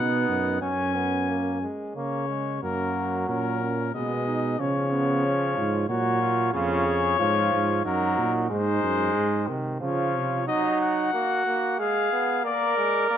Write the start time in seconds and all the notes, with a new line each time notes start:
Already playing: B2 B3 D#4 F#5
0.28 F#2
0.61 F#2 C#4 G#5
0.95 B3
1.29 A#3
1.62 G#3
1.95 C#3 A#3 C#4 C#5
2.29 G#3
2.62 F#2 F#3 A#3 A#4
3.29 A#2 C#4 A#4
3.62 C#4
3.95 B2 G#3 B3 D#5
4.27 D#4
4.59 C#3 F3 C#4 C#5
4.92 B3
5.25 C#4
5.57 G#2 F4
5.89 A#2 F#3 F#4 C#5
6.21 F4
6.53 F2 C#3 F4 C#5
6.86 G#4
7.19 G#2 F3 F4
7.53 G#2
7.85 F#2 F#3 D#4 A#4
8.18 A#2
8.50 G#2 G#3 D#4 C5
8.83 F#2
9.16 G#2
9.48 C3 D#3
9.81 C#3 F3 F4 C#5
10.14 C3
10.47 F#3 D#4 D#5
10.81 F#5
11.13 A#3 F#4
11.46 A#3
11.79 G#3 G#4 F5
12.12 B3
12.44 A#3 A#4 D5
12.77 G#3
13.10 A#3 D5